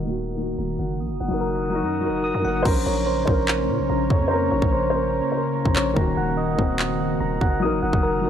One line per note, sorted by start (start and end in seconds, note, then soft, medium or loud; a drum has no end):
0.00 0.56 D#1 loud
0.00 0.04 D#3 loud
0.00 0.98 D#3 medium
0.00 0.07 A#3 medium
0.00 0.96 A#3 medium
0.00 0.10 F#4 loud
0.00 0.98 F#4 medium
0.00 1.00 D#5 medium
0.00 0.78 F#5 medium
0.00 0.57 A#5 loud
0.04 0.32 D#3 medium
0.04 0.33 A#3 medium
0.10 0.35 F#4 medium
0.35 0.99 D#3 medium
0.35 1.00 A#3 medium
0.41 1.01 F#4 medium
0.58 0.78 D#1 loud
0.58 1.00 A#5 medium
0.79 1.01 F#1 loud
0.79 1.00 F#5 medium
1.00 1.12 A#1 loud
1.00 2.64 F#3 medium
1.00 2.64 D#4 medium
1.00 2.64 A#4 medium
1.00 2.23 D#6 loud
1.10 1.20 F#1 loud
1.20 1.30 F#1 loud
1.20 2.43 F#5 medium
1.28 1.84 F#1 loud
1.28 1.65 F#3 medium
1.28 1.66 D#4 medium
1.34 1.68 A#4 medium
1.41 2.65 A#4 medium
1.70 1.97 F#3 medium
1.70 1.99 D#4 medium
1.75 2.00 F#4 loud
1.83 2.10 F#2 loud
2.01 2.37 F#3 medium
2.01 2.39 D#4 medium
2.06 2.33 F#1 loud
2.06 2.40 A#4 medium
2.24 2.65 D#6 medium
2.34 2.44 F#2 loud
2.42 2.65 F#1 loud
2.42 2.61 F#3 medium
2.42 2.62 D#4 medium
2.42 2.65 F#5 medium
2.47 2.64 A#4 medium
2.63 2.85 A#1 loud
2.63 5.93 C#3 medium
2.63 7.58 A#3 medium
2.63 5.93 C#4 medium
2.63 3.18 C#4 loud
2.63 3.17 C5 loud
2.63 3.88 A#5 loud
2.63 kick loud
2.63 crash loud
2.68 3.20 A#4 loud
2.86 3.26 A#1 loud
2.86 4.10 C#5 medium
3.07 4.31 C5 medium
3.25 3.70 A#1 loud
3.25 3.98 C#4 medium
3.25 3.97 C5 medium
3.25 kick medium
3.31 4.00 A#4 loud
3.48 clap loud
3.69 3.81 A#2 loud
3.79 3.89 A#1 loud
3.89 4.09 A#1 loud
3.89 4.30 A#5 medium
4.10 4.50 F2 loud
4.10 4.50 C#5 medium
4.10 kick loud
4.28 4.84 C#4 loud
4.28 4.82 C5 loud
4.28 5.54 A#5 loud
4.33 4.85 A#4 loud
4.51 4.62 A#1 loud
4.51 5.74 C#5 medium
4.62 5.22 A#1 loud
4.62 kick loud
4.72 5.97 C5 medium
4.90 5.28 C#4 medium
4.90 5.27 C5 medium
4.96 5.30 A#4 medium
5.32 5.87 C#4 medium
5.32 5.86 C5 medium
5.37 5.89 A#4 medium
5.55 5.95 A#5 medium
5.65 5.75 A#1 loud
5.65 kick medium
5.75 5.96 A#1 loud
5.75 5.96 C#5 medium
5.75 clap loud
5.94 6.16 D#1 loud
5.94 6.48 D#3 loud
5.94 7.60 D#3 medium
5.94 6.49 A#3 loud
5.94 7.60 F#4 medium
5.94 7.19 A#5 loud
5.94 kick loud
5.99 6.51 F#4 loud
6.17 6.57 D#1 loud
6.17 7.40 F#5 medium
6.37 7.62 D#5 medium
6.56 7.18 D#1 loud
6.56 7.28 D#3 medium
6.56 7.29 A#3 medium
6.56 kick medium
6.61 7.30 C4 loud
6.79 clap loud
7.20 7.40 D#1 loud
7.20 7.62 A#5 loud
7.41 7.64 F#1 loud
7.41 7.62 F#5 medium
7.41 kick loud
7.60 7.74 A#1 loud
7.60 8.30 D#3 medium
7.60 8.14 F#3 loud
7.60 8.30 D#4 medium
7.60 8.15 D#4 loud
7.60 8.30 A#4 medium
7.60 8.30 D#6 loud
7.65 8.16 A#4 loud
7.72 7.82 F#1 loud
7.83 7.93 F#1 loud
7.83 8.30 F#5 medium
7.93 8.30 F#1 loud
7.93 kick loud
8.03 8.30 A#4 medium
8.21 8.30 F#3 medium
8.21 8.30 D#4 medium